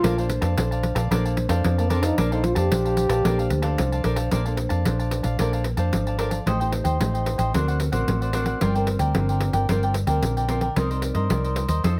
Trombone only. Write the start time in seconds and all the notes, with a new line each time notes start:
Already playing: F4
1.79 A#3
1.90 C4
2.03 D#4
2.19 D4
2.33 D#4
2.45 F4
2.57 G4